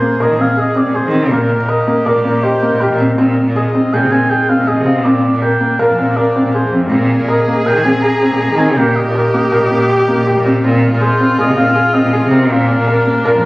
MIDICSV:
0, 0, Header, 1, 7, 480
1, 0, Start_track
1, 0, Tempo, 372902
1, 1697, Time_signature, 5, 2, 24, 8
1, 17318, End_track
2, 0, Start_track
2, 0, Title_t, "Celesta"
2, 0, Program_c, 0, 8
2, 0, Note_on_c, 0, 68, 66
2, 1343, Note_off_c, 0, 68, 0
2, 3113, Note_on_c, 0, 75, 63
2, 4272, Note_off_c, 0, 75, 0
2, 6259, Note_on_c, 0, 77, 65
2, 6705, Note_off_c, 0, 77, 0
2, 7468, Note_on_c, 0, 77, 61
2, 7644, Note_on_c, 0, 80, 45
2, 9094, Note_off_c, 0, 77, 0
2, 9242, Note_off_c, 0, 80, 0
2, 9390, Note_on_c, 0, 82, 57
2, 11196, Note_off_c, 0, 82, 0
2, 16098, Note_on_c, 0, 77, 60
2, 16281, Note_on_c, 0, 80, 48
2, 16442, Note_on_c, 0, 82, 48
2, 17318, Note_off_c, 0, 77, 0
2, 17318, Note_off_c, 0, 80, 0
2, 17318, Note_off_c, 0, 82, 0
2, 17318, End_track
3, 0, Start_track
3, 0, Title_t, "Oboe"
3, 0, Program_c, 1, 68
3, 0, Note_on_c, 1, 72, 80
3, 287, Note_on_c, 1, 75, 80
3, 306, Note_off_c, 1, 72, 0
3, 529, Note_on_c, 1, 77, 87
3, 549, Note_off_c, 1, 75, 0
3, 770, Note_on_c, 1, 75, 88
3, 790, Note_off_c, 1, 77, 0
3, 994, Note_on_c, 1, 74, 78
3, 1013, Note_off_c, 1, 75, 0
3, 1235, Note_on_c, 1, 72, 74
3, 1254, Note_off_c, 1, 74, 0
3, 1690, Note_off_c, 1, 72, 0
3, 1698, Note_on_c, 1, 70, 76
3, 2175, Note_on_c, 1, 75, 87
3, 2195, Note_off_c, 1, 70, 0
3, 2650, Note_on_c, 1, 74, 76
3, 2669, Note_off_c, 1, 75, 0
3, 3134, Note_on_c, 1, 72, 76
3, 3153, Note_off_c, 1, 74, 0
3, 3618, Note_on_c, 1, 70, 65
3, 3637, Note_off_c, 1, 72, 0
3, 3976, Note_off_c, 1, 70, 0
3, 4582, Note_on_c, 1, 75, 86
3, 5066, Note_on_c, 1, 79, 89
3, 5085, Note_off_c, 1, 75, 0
3, 5299, Note_on_c, 1, 80, 91
3, 5318, Note_off_c, 1, 79, 0
3, 5540, Note_on_c, 1, 79, 92
3, 5559, Note_off_c, 1, 80, 0
3, 5783, Note_on_c, 1, 77, 84
3, 5802, Note_off_c, 1, 79, 0
3, 6023, Note_on_c, 1, 75, 77
3, 6042, Note_off_c, 1, 77, 0
3, 6491, Note_on_c, 1, 74, 82
3, 6511, Note_off_c, 1, 75, 0
3, 6970, Note_off_c, 1, 74, 0
3, 6977, Note_on_c, 1, 79, 83
3, 7459, Note_on_c, 1, 77, 76
3, 7479, Note_off_c, 1, 79, 0
3, 7934, Note_on_c, 1, 74, 82
3, 7954, Note_off_c, 1, 77, 0
3, 8417, Note_off_c, 1, 74, 0
3, 8426, Note_on_c, 1, 72, 60
3, 8758, Note_off_c, 1, 72, 0
3, 9389, Note_on_c, 1, 75, 82
3, 9862, Note_on_c, 1, 79, 83
3, 9882, Note_off_c, 1, 75, 0
3, 10093, Note_on_c, 1, 80, 90
3, 10112, Note_off_c, 1, 79, 0
3, 10324, Note_on_c, 1, 82, 102
3, 10343, Note_off_c, 1, 80, 0
3, 11054, Note_on_c, 1, 80, 86
3, 11073, Note_off_c, 1, 82, 0
3, 11292, Note_on_c, 1, 79, 88
3, 11311, Note_off_c, 1, 80, 0
3, 11532, Note_on_c, 1, 75, 81
3, 11551, Note_off_c, 1, 79, 0
3, 13458, Note_off_c, 1, 75, 0
3, 14171, Note_on_c, 1, 72, 90
3, 14623, Note_off_c, 1, 72, 0
3, 14660, Note_on_c, 1, 75, 91
3, 14884, Note_off_c, 1, 75, 0
3, 14893, Note_on_c, 1, 77, 109
3, 15366, Note_on_c, 1, 75, 95
3, 15385, Note_off_c, 1, 77, 0
3, 15836, Note_off_c, 1, 75, 0
3, 15844, Note_on_c, 1, 70, 90
3, 17318, Note_off_c, 1, 70, 0
3, 17318, End_track
4, 0, Start_track
4, 0, Title_t, "Viola"
4, 0, Program_c, 2, 41
4, 8897, Note_on_c, 2, 68, 110
4, 11300, Note_on_c, 2, 67, 113
4, 11319, Note_off_c, 2, 68, 0
4, 13688, Note_on_c, 2, 65, 107
4, 13707, Note_off_c, 2, 67, 0
4, 16084, Note_on_c, 2, 62, 86
4, 16103, Note_off_c, 2, 65, 0
4, 17318, Note_off_c, 2, 62, 0
4, 17318, End_track
5, 0, Start_track
5, 0, Title_t, "Felt piano"
5, 0, Program_c, 3, 0
5, 19, Note_on_c, 3, 58, 60
5, 173, Note_off_c, 3, 58, 0
5, 261, Note_on_c, 3, 70, 67
5, 414, Note_off_c, 3, 70, 0
5, 496, Note_on_c, 3, 60, 57
5, 650, Note_off_c, 3, 60, 0
5, 733, Note_on_c, 3, 68, 67
5, 888, Note_off_c, 3, 68, 0
5, 971, Note_on_c, 3, 60, 59
5, 1127, Note_off_c, 3, 60, 0
5, 1214, Note_on_c, 3, 68, 65
5, 1368, Note_off_c, 3, 68, 0
5, 1452, Note_on_c, 3, 60, 61
5, 1606, Note_off_c, 3, 60, 0
5, 1691, Note_on_c, 3, 58, 69
5, 1999, Note_off_c, 3, 58, 0
5, 2167, Note_on_c, 3, 70, 66
5, 2323, Note_off_c, 3, 70, 0
5, 2410, Note_on_c, 3, 58, 63
5, 2565, Note_off_c, 3, 58, 0
5, 2653, Note_on_c, 3, 70, 69
5, 2806, Note_off_c, 3, 70, 0
5, 2892, Note_on_c, 3, 58, 66
5, 3046, Note_off_c, 3, 58, 0
5, 3133, Note_on_c, 3, 67, 68
5, 3286, Note_off_c, 3, 67, 0
5, 3377, Note_on_c, 3, 58, 62
5, 3530, Note_off_c, 3, 58, 0
5, 3617, Note_on_c, 3, 67, 70
5, 3769, Note_off_c, 3, 67, 0
5, 3859, Note_on_c, 3, 60, 65
5, 4011, Note_off_c, 3, 60, 0
5, 4096, Note_on_c, 3, 60, 75
5, 4401, Note_off_c, 3, 60, 0
5, 4581, Note_on_c, 3, 68, 73
5, 4732, Note_off_c, 3, 68, 0
5, 4822, Note_on_c, 3, 60, 64
5, 4973, Note_off_c, 3, 60, 0
5, 5063, Note_on_c, 3, 68, 73
5, 5214, Note_off_c, 3, 68, 0
5, 5304, Note_on_c, 3, 60, 69
5, 5454, Note_off_c, 3, 60, 0
5, 5541, Note_on_c, 3, 68, 76
5, 5692, Note_off_c, 3, 68, 0
5, 5780, Note_on_c, 3, 60, 66
5, 5932, Note_off_c, 3, 60, 0
5, 6016, Note_on_c, 3, 68, 70
5, 6169, Note_off_c, 3, 68, 0
5, 6255, Note_on_c, 3, 60, 65
5, 6408, Note_off_c, 3, 60, 0
5, 6501, Note_on_c, 3, 60, 78
5, 6806, Note_off_c, 3, 60, 0
5, 6977, Note_on_c, 3, 70, 65
5, 7130, Note_off_c, 3, 70, 0
5, 7213, Note_on_c, 3, 58, 63
5, 7367, Note_off_c, 3, 58, 0
5, 7456, Note_on_c, 3, 70, 71
5, 7610, Note_off_c, 3, 70, 0
5, 7703, Note_on_c, 3, 60, 60
5, 7855, Note_off_c, 3, 60, 0
5, 7939, Note_on_c, 3, 70, 67
5, 8092, Note_off_c, 3, 70, 0
5, 8183, Note_on_c, 3, 60, 66
5, 8335, Note_off_c, 3, 60, 0
5, 8422, Note_on_c, 3, 68, 68
5, 8574, Note_off_c, 3, 68, 0
5, 8661, Note_on_c, 3, 60, 58
5, 8814, Note_off_c, 3, 60, 0
5, 8901, Note_on_c, 3, 60, 74
5, 9207, Note_off_c, 3, 60, 0
5, 9376, Note_on_c, 3, 70, 70
5, 9531, Note_off_c, 3, 70, 0
5, 9623, Note_on_c, 3, 58, 63
5, 9776, Note_off_c, 3, 58, 0
5, 9861, Note_on_c, 3, 70, 68
5, 10015, Note_off_c, 3, 70, 0
5, 10103, Note_on_c, 3, 60, 67
5, 10256, Note_off_c, 3, 60, 0
5, 10348, Note_on_c, 3, 68, 73
5, 10499, Note_off_c, 3, 68, 0
5, 10583, Note_on_c, 3, 60, 65
5, 10736, Note_off_c, 3, 60, 0
5, 10818, Note_on_c, 3, 68, 68
5, 10972, Note_off_c, 3, 68, 0
5, 11063, Note_on_c, 3, 60, 69
5, 11216, Note_off_c, 3, 60, 0
5, 11304, Note_on_c, 3, 58, 78
5, 11610, Note_off_c, 3, 58, 0
5, 11780, Note_on_c, 3, 70, 72
5, 11934, Note_off_c, 3, 70, 0
5, 12020, Note_on_c, 3, 58, 68
5, 12174, Note_off_c, 3, 58, 0
5, 12255, Note_on_c, 3, 70, 76
5, 12411, Note_off_c, 3, 70, 0
5, 12497, Note_on_c, 3, 58, 68
5, 12652, Note_off_c, 3, 58, 0
5, 12739, Note_on_c, 3, 67, 76
5, 12894, Note_off_c, 3, 67, 0
5, 12977, Note_on_c, 3, 58, 69
5, 13132, Note_off_c, 3, 58, 0
5, 13219, Note_on_c, 3, 67, 80
5, 13374, Note_off_c, 3, 67, 0
5, 13461, Note_on_c, 3, 60, 67
5, 13615, Note_off_c, 3, 60, 0
5, 13696, Note_on_c, 3, 60, 75
5, 14005, Note_off_c, 3, 60, 0
5, 14173, Note_on_c, 3, 68, 74
5, 14329, Note_off_c, 3, 68, 0
5, 14419, Note_on_c, 3, 60, 70
5, 14573, Note_off_c, 3, 60, 0
5, 14656, Note_on_c, 3, 68, 78
5, 14811, Note_off_c, 3, 68, 0
5, 14894, Note_on_c, 3, 60, 71
5, 15050, Note_off_c, 3, 60, 0
5, 15131, Note_on_c, 3, 68, 81
5, 15288, Note_off_c, 3, 68, 0
5, 15369, Note_on_c, 3, 60, 77
5, 15526, Note_off_c, 3, 60, 0
5, 15614, Note_on_c, 3, 68, 77
5, 15770, Note_off_c, 3, 68, 0
5, 15846, Note_on_c, 3, 60, 71
5, 16004, Note_off_c, 3, 60, 0
5, 16090, Note_on_c, 3, 60, 83
5, 16399, Note_off_c, 3, 60, 0
5, 16572, Note_on_c, 3, 70, 80
5, 16728, Note_off_c, 3, 70, 0
5, 16815, Note_on_c, 3, 58, 69
5, 16970, Note_off_c, 3, 58, 0
5, 17061, Note_on_c, 3, 70, 82
5, 17213, Note_off_c, 3, 70, 0
5, 17318, End_track
6, 0, Start_track
6, 0, Title_t, "Woodwind section"
6, 0, Program_c, 4, 71
6, 0, Note_on_c, 4, 48, 62
6, 0, Note_on_c, 4, 58, 54
6, 0, Note_on_c, 4, 68, 73
6, 1667, Note_off_c, 4, 48, 0
6, 1668, Note_off_c, 4, 58, 0
6, 1668, Note_off_c, 4, 68, 0
6, 1688, Note_on_c, 4, 51, 65
6, 1688, Note_on_c, 4, 67, 74
6, 1695, Note_on_c, 4, 58, 59
6, 4065, Note_off_c, 4, 67, 0
6, 4069, Note_off_c, 4, 58, 0
6, 4086, Note_on_c, 4, 56, 64
6, 4090, Note_on_c, 4, 65, 72
6, 6443, Note_off_c, 4, 51, 0
6, 6468, Note_off_c, 4, 56, 0
6, 6470, Note_off_c, 4, 65, 0
6, 6499, Note_on_c, 4, 48, 72
6, 6499, Note_on_c, 4, 58, 61
6, 6508, Note_on_c, 4, 62, 75
6, 8694, Note_off_c, 4, 62, 0
6, 8913, Note_on_c, 4, 68, 75
6, 11257, Note_off_c, 4, 48, 0
6, 11257, Note_off_c, 4, 58, 0
6, 11286, Note_off_c, 4, 68, 0
6, 11293, Note_on_c, 4, 58, 64
6, 11299, Note_on_c, 4, 67, 76
6, 11300, Note_on_c, 4, 51, 69
6, 13674, Note_off_c, 4, 58, 0
6, 13677, Note_off_c, 4, 67, 0
6, 13687, Note_on_c, 4, 65, 80
6, 13692, Note_on_c, 4, 56, 69
6, 16051, Note_off_c, 4, 51, 0
6, 16069, Note_off_c, 4, 65, 0
6, 16071, Note_off_c, 4, 56, 0
6, 16096, Note_on_c, 4, 62, 82
6, 16101, Note_on_c, 4, 58, 71
6, 16103, Note_on_c, 4, 48, 78
6, 17318, Note_off_c, 4, 48, 0
6, 17318, Note_off_c, 4, 58, 0
6, 17318, Note_off_c, 4, 62, 0
6, 17318, End_track
7, 0, Start_track
7, 0, Title_t, "Cello"
7, 0, Program_c, 5, 42
7, 262, Note_on_c, 5, 46, 76
7, 366, Note_off_c, 5, 46, 0
7, 374, Note_on_c, 5, 51, 66
7, 486, Note_off_c, 5, 51, 0
7, 494, Note_on_c, 5, 46, 69
7, 722, Note_off_c, 5, 46, 0
7, 1092, Note_on_c, 5, 46, 65
7, 1208, Note_off_c, 5, 46, 0
7, 1334, Note_on_c, 5, 51, 85
7, 1686, Note_on_c, 5, 46, 88
7, 1705, Note_off_c, 5, 51, 0
7, 2030, Note_off_c, 5, 46, 0
7, 2048, Note_on_c, 5, 46, 67
7, 2277, Note_off_c, 5, 46, 0
7, 2647, Note_on_c, 5, 46, 83
7, 2755, Note_off_c, 5, 46, 0
7, 2763, Note_on_c, 5, 46, 71
7, 2879, Note_off_c, 5, 46, 0
7, 2886, Note_on_c, 5, 46, 68
7, 3116, Note_off_c, 5, 46, 0
7, 3494, Note_on_c, 5, 46, 72
7, 3607, Note_off_c, 5, 46, 0
7, 3730, Note_on_c, 5, 46, 84
7, 4071, Note_off_c, 5, 46, 0
7, 4091, Note_on_c, 5, 46, 93
7, 4431, Note_off_c, 5, 46, 0
7, 4453, Note_on_c, 5, 46, 73
7, 4680, Note_off_c, 5, 46, 0
7, 5060, Note_on_c, 5, 46, 87
7, 5171, Note_off_c, 5, 46, 0
7, 5179, Note_on_c, 5, 48, 76
7, 5290, Note_off_c, 5, 48, 0
7, 5297, Note_on_c, 5, 46, 71
7, 5522, Note_off_c, 5, 46, 0
7, 5899, Note_on_c, 5, 46, 77
7, 6010, Note_off_c, 5, 46, 0
7, 6139, Note_on_c, 5, 48, 84
7, 6491, Note_on_c, 5, 46, 93
7, 6511, Note_off_c, 5, 48, 0
7, 6833, Note_off_c, 5, 46, 0
7, 6856, Note_on_c, 5, 46, 75
7, 7083, Note_off_c, 5, 46, 0
7, 7457, Note_on_c, 5, 46, 83
7, 7566, Note_off_c, 5, 46, 0
7, 7574, Note_on_c, 5, 41, 70
7, 7682, Note_off_c, 5, 41, 0
7, 7689, Note_on_c, 5, 46, 69
7, 7920, Note_off_c, 5, 46, 0
7, 8292, Note_on_c, 5, 46, 69
7, 8408, Note_off_c, 5, 46, 0
7, 8532, Note_on_c, 5, 41, 84
7, 8895, Note_on_c, 5, 46, 99
7, 8914, Note_off_c, 5, 41, 0
7, 9237, Note_off_c, 5, 46, 0
7, 9258, Note_on_c, 5, 46, 74
7, 9486, Note_off_c, 5, 46, 0
7, 9853, Note_on_c, 5, 46, 84
7, 9965, Note_off_c, 5, 46, 0
7, 9973, Note_on_c, 5, 51, 70
7, 10090, Note_off_c, 5, 51, 0
7, 10096, Note_on_c, 5, 46, 68
7, 10325, Note_off_c, 5, 46, 0
7, 10702, Note_on_c, 5, 46, 72
7, 10815, Note_off_c, 5, 46, 0
7, 10946, Note_on_c, 5, 51, 89
7, 11299, Note_on_c, 5, 46, 93
7, 11318, Note_off_c, 5, 51, 0
7, 11640, Note_off_c, 5, 46, 0
7, 11656, Note_on_c, 5, 46, 78
7, 11886, Note_off_c, 5, 46, 0
7, 12254, Note_on_c, 5, 46, 87
7, 12371, Note_off_c, 5, 46, 0
7, 12377, Note_on_c, 5, 46, 79
7, 12493, Note_off_c, 5, 46, 0
7, 12501, Note_on_c, 5, 46, 77
7, 12728, Note_off_c, 5, 46, 0
7, 13095, Note_on_c, 5, 46, 78
7, 13212, Note_off_c, 5, 46, 0
7, 13341, Note_on_c, 5, 46, 92
7, 13681, Note_off_c, 5, 46, 0
7, 13702, Note_on_c, 5, 46, 105
7, 14042, Note_off_c, 5, 46, 0
7, 14057, Note_on_c, 5, 46, 84
7, 14286, Note_off_c, 5, 46, 0
7, 14659, Note_on_c, 5, 46, 88
7, 14768, Note_off_c, 5, 46, 0
7, 14776, Note_on_c, 5, 48, 82
7, 14892, Note_off_c, 5, 48, 0
7, 14897, Note_on_c, 5, 46, 77
7, 15126, Note_off_c, 5, 46, 0
7, 15499, Note_on_c, 5, 46, 83
7, 15613, Note_off_c, 5, 46, 0
7, 15732, Note_on_c, 5, 48, 96
7, 16099, Note_on_c, 5, 46, 105
7, 16118, Note_off_c, 5, 48, 0
7, 16438, Note_off_c, 5, 46, 0
7, 16457, Note_on_c, 5, 46, 86
7, 16684, Note_off_c, 5, 46, 0
7, 17056, Note_on_c, 5, 46, 94
7, 17171, Note_off_c, 5, 46, 0
7, 17180, Note_on_c, 5, 41, 75
7, 17293, Note_off_c, 5, 41, 0
7, 17318, End_track
0, 0, End_of_file